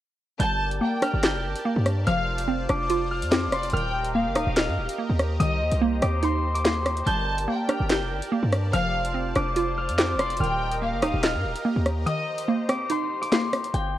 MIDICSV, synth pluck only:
0, 0, Header, 1, 2, 480
1, 0, Start_track
1, 0, Key_signature, -2, "minor"
1, 0, Tempo, 416667
1, 462, Time_signature, 4, 2, 24, 8
1, 16110, End_track
2, 0, Start_track
2, 0, Title_t, "Synth pluck"
2, 0, Program_c, 0, 84
2, 457, Note_on_c, 0, 55, 92
2, 935, Note_on_c, 0, 58, 88
2, 1177, Note_on_c, 0, 62, 86
2, 1422, Note_on_c, 0, 67, 97
2, 1659, Note_off_c, 0, 55, 0
2, 1889, Note_off_c, 0, 58, 0
2, 1903, Note_on_c, 0, 58, 96
2, 2379, Note_off_c, 0, 62, 0
2, 2382, Note_off_c, 0, 58, 0
2, 2382, Note_off_c, 0, 67, 0
2, 2383, Note_on_c, 0, 53, 99
2, 2853, Note_on_c, 0, 60, 82
2, 3102, Note_on_c, 0, 62, 91
2, 3338, Note_on_c, 0, 65, 99
2, 3582, Note_off_c, 0, 53, 0
2, 3808, Note_off_c, 0, 60, 0
2, 3821, Note_on_c, 0, 60, 91
2, 4300, Note_off_c, 0, 65, 0
2, 4302, Note_off_c, 0, 60, 0
2, 4302, Note_off_c, 0, 62, 0
2, 4306, Note_on_c, 0, 51, 101
2, 4784, Note_on_c, 0, 58, 91
2, 5024, Note_on_c, 0, 63, 84
2, 5263, Note_on_c, 0, 75, 93
2, 5504, Note_off_c, 0, 51, 0
2, 5726, Note_off_c, 0, 58, 0
2, 5740, Note_on_c, 0, 58, 88
2, 6217, Note_on_c, 0, 51, 88
2, 6221, Note_off_c, 0, 58, 0
2, 6223, Note_off_c, 0, 63, 0
2, 6223, Note_off_c, 0, 75, 0
2, 6700, Note_on_c, 0, 58, 98
2, 6936, Note_on_c, 0, 60, 86
2, 7177, Note_on_c, 0, 63, 100
2, 7419, Note_off_c, 0, 51, 0
2, 7644, Note_off_c, 0, 58, 0
2, 7658, Note_on_c, 0, 58, 99
2, 8137, Note_on_c, 0, 55, 92
2, 8139, Note_off_c, 0, 60, 0
2, 8139, Note_off_c, 0, 63, 0
2, 8140, Note_off_c, 0, 58, 0
2, 8615, Note_on_c, 0, 58, 88
2, 8856, Note_on_c, 0, 62, 84
2, 9102, Note_on_c, 0, 67, 101
2, 9339, Note_off_c, 0, 55, 0
2, 9569, Note_off_c, 0, 58, 0
2, 9583, Note_on_c, 0, 58, 96
2, 10059, Note_off_c, 0, 62, 0
2, 10062, Note_off_c, 0, 58, 0
2, 10062, Note_off_c, 0, 67, 0
2, 10062, Note_on_c, 0, 53, 101
2, 10533, Note_on_c, 0, 60, 83
2, 10782, Note_on_c, 0, 62, 94
2, 11018, Note_on_c, 0, 65, 95
2, 11262, Note_off_c, 0, 53, 0
2, 11488, Note_off_c, 0, 60, 0
2, 11501, Note_on_c, 0, 60, 88
2, 11980, Note_off_c, 0, 65, 0
2, 11981, Note_off_c, 0, 60, 0
2, 11982, Note_off_c, 0, 62, 0
2, 11985, Note_on_c, 0, 51, 99
2, 12463, Note_on_c, 0, 58, 94
2, 12702, Note_on_c, 0, 63, 82
2, 12943, Note_on_c, 0, 75, 93
2, 13183, Note_off_c, 0, 51, 0
2, 13406, Note_off_c, 0, 58, 0
2, 13420, Note_on_c, 0, 58, 89
2, 13896, Note_on_c, 0, 51, 90
2, 13901, Note_off_c, 0, 58, 0
2, 13902, Note_off_c, 0, 63, 0
2, 13902, Note_off_c, 0, 75, 0
2, 14380, Note_on_c, 0, 58, 94
2, 14616, Note_on_c, 0, 60, 82
2, 14858, Note_on_c, 0, 63, 95
2, 15099, Note_off_c, 0, 51, 0
2, 15324, Note_off_c, 0, 58, 0
2, 15337, Note_on_c, 0, 58, 100
2, 15819, Note_off_c, 0, 60, 0
2, 15820, Note_off_c, 0, 58, 0
2, 15820, Note_off_c, 0, 63, 0
2, 16110, End_track
0, 0, End_of_file